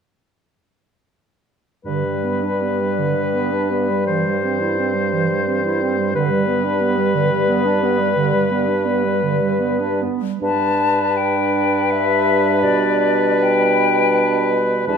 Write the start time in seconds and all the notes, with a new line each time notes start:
1.85 G2 D3 G3 B4
2.05 G3
2.25 B3
2.43 D4
2.62 B3
2.80 G3
2.99 D3
3.16 G3
3.34 B3
3.52 D4
3.71 B3
3.90 G3
4.07 E3 C5
4.26 G3
4.44 C4
4.61 E4
4.78 C4
4.94 G3
5.13 E3
5.30 G3
5.48 C4
5.65 E4
5.82 C4
5.99 G3
6.14 G2 D3 G3 B4
6.31 G3
6.47 B3
6.64 D4
6.81 B3
6.98 G3
7.15 D3
7.31 G3
7.49 B3
7.65 D4
7.83 B3
7.99 G3
8.16 D3
8.34 G3
8.51 B3
8.68 D4
8.85 B3
9.04 G3
9.23 D3
9.41 G3
9.60 B3
9.80 D4
10.02 B3
10.22 G3
10.41 G2 G3 D4 B4 A5
11.17 G5
11.91 E5
12.63 B2 D5
13.43 G5
14.87 E2 G3 D4 B4 A5